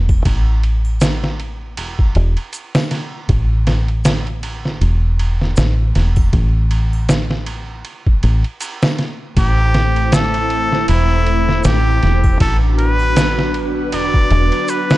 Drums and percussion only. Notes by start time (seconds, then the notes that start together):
0.09 kick, triangle
0.25 kick, ride
0.63 ride
0.85 triangle
1.01 snare, ride, shaker
1.24 snare
1.40 ride
1.77 ride
1.99 kick
2.15 ride
2.37 ride
2.53 ride, shaker
2.75 snare, triangle
2.91 snare, ride
3.29 kick, ride
3.67 snare, ride
3.88 ride
4.05 snare, ride, shaker
4.27 ride
4.43 ride
4.65 snare
4.81 ride
5.19 ride
5.42 snare
5.56 snare, ride, shaker
5.95 snare, ride
6.16 kick, triangle
6.33 kick, ride
6.71 ride
6.93 triangle
7.09 snare, ride, shaker
7.31 snare
7.46 ride
7.85 ride
8.06 kick
8.23 ride
8.44 ride
8.61 ride, shaker
8.82 snare, triangle
8.98 snare, ride
9.37 kick, ride
9.74 snare, ride
9.96 ride
10.12 snare, ride, shaker
10.34 ride
10.50 ride
10.72 snare
10.88 ride
11.27 ride
11.49 snare
11.64 snare, ride, shaker
12.03 snare, ride
12.24 kick, triangle
12.40 kick, ride
12.79 ride
12.99 triangle
13.16 snare, ride, shaker
13.38 snare
13.54 ride
13.92 ride
14.14 kick
14.31 ride
14.52 ride
14.68 ride, shaker
14.90 snare, triangle